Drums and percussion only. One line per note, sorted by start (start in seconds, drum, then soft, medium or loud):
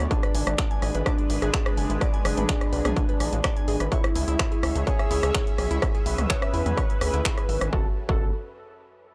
0.11 kick loud
0.11 closed hi-hat medium
0.23 cross-stick medium
0.23 closed hi-hat soft
0.35 open hi-hat loud
0.47 cross-stick medium
0.47 closed hi-hat medium
0.58 finger snap loud
0.58 kick loud
0.58 closed hi-hat medium
0.71 closed hi-hat soft
0.82 cross-stick medium
0.82 open hi-hat medium
0.95 closed hi-hat medium
1.06 kick loud
1.06 cross-stick medium
1.06 closed hi-hat medium
1.18 closed hi-hat soft
1.30 open hi-hat loud
1.42 cross-stick medium
1.42 closed hi-hat medium
1.54 finger snap loud
1.54 kick loud
1.54 closed hi-hat medium
1.66 cross-stick medium
1.66 closed hi-hat soft
1.77 open hi-hat loud
1.90 closed hi-hat medium
2.01 kick loud
2.01 cross-stick medium
2.01 closed hi-hat medium
2.14 closed hi-hat soft
2.25 cross-stick medium
2.25 open hi-hat loud
2.37 closed hi-hat medium
2.37 mid tom medium
2.49 finger snap loud
2.49 kick loud
2.49 closed hi-hat medium
2.61 cross-stick medium
2.61 closed hi-hat soft
2.73 open hi-hat medium
2.85 cross-stick medium
2.85 closed hi-hat medium
2.85 mid tom medium
2.96 kick loud
2.96 closed hi-hat medium
3.09 closed hi-hat soft
3.20 cross-stick medium
3.20 open hi-hat loud
3.33 closed hi-hat medium
3.44 finger snap loud
3.44 kick loud
3.44 cross-stick medium
3.44 closed hi-hat medium
3.56 closed hi-hat soft
3.68 open hi-hat medium
3.80 cross-stick medium
3.80 closed hi-hat medium
3.92 kick loud
3.92 closed hi-hat medium
4.04 cross-stick medium
4.04 closed hi-hat soft
4.16 open hi-hat loud
4.28 closed hi-hat medium
4.39 finger snap loud
4.39 kick loud
4.39 cross-stick soft
4.39 closed hi-hat medium
4.52 closed hi-hat soft
4.63 cross-stick medium
4.63 open hi-hat medium
4.76 closed hi-hat medium
4.87 kick loud
4.87 closed hi-hat medium
4.99 cross-stick medium
4.99 closed hi-hat soft
5.11 open hi-hat loud
5.23 cross-stick medium
5.23 closed hi-hat medium
5.35 finger snap loud
5.35 kick loud
5.35 closed hi-hat medium
5.47 closed hi-hat soft
5.58 cross-stick medium
5.58 open hi-hat medium
5.71 closed hi-hat medium
5.82 kick loud
5.82 cross-stick medium
5.82 closed hi-hat medium
5.95 closed hi-hat soft
6.06 open hi-hat loud
6.18 cross-stick medium
6.18 closed hi-hat medium
6.18 mid tom medium
6.30 finger snap loud
6.30 kick loud
6.30 closed hi-hat medium
6.42 cross-stick medium
6.42 closed hi-hat soft
6.54 open hi-hat medium
6.66 closed hi-hat medium
6.66 mid tom medium
6.77 kick loud
6.77 cross-stick soft
6.77 closed hi-hat medium
6.90 closed hi-hat soft
7.01 cross-stick medium
7.01 open hi-hat loud
7.14 closed hi-hat medium
7.25 finger snap loud
7.25 kick loud
7.25 closed hi-hat medium
7.38 cross-stick soft
7.38 closed hi-hat soft
7.49 open hi-hat medium
7.61 cross-stick medium
7.61 closed hi-hat medium
7.73 kick loud
8.09 kick loud